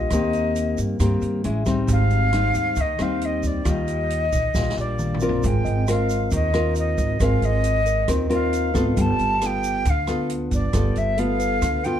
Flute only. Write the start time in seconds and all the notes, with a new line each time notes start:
Already playing: D#5
1.92 F5
2.81 D#5
3.02 F5
3.25 D#5
3.47 D5
3.69 D#5
4.80 D5
5.46 G5
5.90 F5
6.35 D#5
6.79 D#5
7.24 F5
7.45 D#5
8.34 F5
9.01 A5
9.46 G5
9.90 F5
10.54 D5
10.98 E5
11.19 F5
11.84 G5